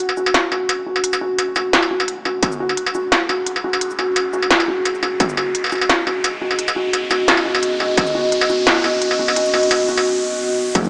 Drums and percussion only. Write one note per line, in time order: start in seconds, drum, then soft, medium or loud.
0.09 struck metal medium
0.17 shaker medium
0.26 struck metal medium
0.34 snare loud
0.34 closed hi-hat medium
0.52 struck metal medium
0.69 closed hi-hat medium
0.69 struck metal medium
0.96 struck metal medium
1.04 closed hi-hat medium
1.13 struck metal medium
1.13 shaker medium
1.39 closed hi-hat medium
1.39 struck metal medium
1.56 struck metal medium
1.56 shaker medium
1.73 snare loud
1.73 closed hi-hat medium
1.83 struck metal medium
2.00 struck metal medium
2.08 closed hi-hat medium
2.25 struck metal medium
2.43 kick loud
2.43 closed hi-hat medium
2.43 struck metal medium
2.52 shaker medium
2.69 struck metal soft
2.77 closed hi-hat medium
2.86 struck metal medium
2.95 shaker medium
3.12 snare loud
3.12 closed hi-hat medium
3.12 struck metal soft
3.29 struck metal medium
3.46 closed hi-hat medium
3.56 struck metal soft
3.73 struck metal medium
3.81 closed hi-hat medium
3.91 shaker medium
3.99 struck metal soft
4.16 closed hi-hat medium
4.16 struck metal medium
4.33 shaker medium
4.42 struck metal soft
4.51 snare loud
4.51 closed hi-hat medium
4.60 struck metal medium
4.85 closed hi-hat medium
4.85 struck metal soft
4.95 shaker soft
5.03 struck metal medium
5.20 kick loud
5.20 closed hi-hat medium
5.20 struck metal medium
5.29 shaker medium
5.37 struck metal medium
5.55 closed hi-hat medium
5.64 struck metal soft
5.66 struck metal soft
5.69 struck metal soft
5.72 struck metal soft
5.72 shaker medium
5.75 struck metal soft
5.78 struck metal soft
5.81 struck metal medium
5.89 snare loud
5.89 closed hi-hat medium
6.07 struck metal soft
6.24 closed hi-hat medium
6.24 struck metal medium
6.51 struck metal medium
6.59 closed hi-hat medium
6.68 struck metal medium
6.68 shaker medium
6.93 closed hi-hat medium
6.93 struck metal soft
7.11 struck metal medium
7.11 shaker medium
7.28 snare loud
7.28 closed hi-hat medium
7.37 struck metal medium
7.55 struck metal medium
7.63 closed hi-hat medium
7.80 struck metal medium
7.97 kick loud
7.97 closed hi-hat medium
7.97 struck metal medium
8.07 shaker medium
8.32 closed hi-hat medium
8.41 struck metal medium
8.49 shaker medium
8.67 snare loud
8.67 closed hi-hat medium
8.67 struck metal medium
8.84 struck metal medium
9.02 closed hi-hat medium
9.11 struck metal medium
9.28 struck metal medium
9.36 closed hi-hat medium
9.46 shaker medium
9.54 struck metal medium
9.63 closed hi-hat soft
9.71 closed hi-hat medium
9.71 struck metal medium
9.88 shaker medium
9.98 closed hi-hat soft
9.98 struck metal medium
10.75 kick loud
10.75 closed hi-hat medium
10.75 struck metal medium
10.84 shaker medium